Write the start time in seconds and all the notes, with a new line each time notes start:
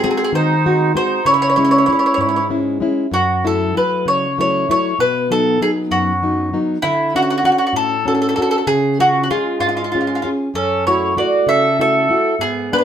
Already playing: C4
0.04 G#3 C4 F#4 G#4
0.11 G#4
0.17 G#4
0.24 G#4
0.32 D#3 D#4 C5
0.65 G#3 C4 F#4
0.94 G#3 C4 D#4 F#4 C5
1.25 C#3 E4 C#5
1.34 C#5
1.42 C#5
1.50 C#5
1.56 G#3 C#4 E4 C#5
1.65 C#5
1.71 C#5
1.78 C#5
1.86 G#3 C#4 E4 C#5
1.92 C#5
1.99 C#5
2.06 C#5
2.14 G#2 C#5
2.21 C#5
2.29 C#5
2.36 C#5
2.50 G#3 C#4 E4
2.80 G#3 C#4 E4
3.11 F#2 F#4
3.44 F#3 A3 E4 A4
3.74 F#3 A3 E4 B4
4.05 C#3 C#5
4.38 F#3 A3 E4 C#5
4.69 F#3 A3 E4 C#5
4.99 B2 B4
5.30 F#3 B3 D#4 A4
5.61 F#3 B3 D#4 G#4
5.91 F#2 F#4
6.23 F#3 B3 D#4
6.53 F#3 B3 D#4
6.82 D3 E4
7.15 C#4 D4 F#4
7.22 F#4
7.30 F#4
7.38 F#4
7.44 C#4 D4 F#4
7.52 F#4
7.58 F#4
7.67 F#4
7.73 A2 A4
8.06 C#4 D4 F#4 A4
8.15 A4
8.22 A4
8.29 A4
8.36 C#4 D4 F#4 A4
8.42 A4
8.51 A4
8.67 C#3 G#4
9.00 C#4 F4 F#4 G#4
9.24 F#4
9.30 G#3 C#4 F4 G#4
9.60 G#2 G#3 F4
9.69 F4
9.77 F4
9.84 F4
9.92 C#4 F4 G#4
10.01 F4
10.07 F4
10.15 F4
10.22 C#4 F4 G#4
10.54 F#2 C#4 A4
10.87 A3 E4 F#4 C#5
11.16 A3 E4 F#4 D5
11.46 C#3 A4 E5
11.79 A3 E4 F#4 A4 E5
12.10 A3 E4 F#4
12.39 G#2 B3 G#4
12.71 G#3 B3 D4 B4
12.78 B4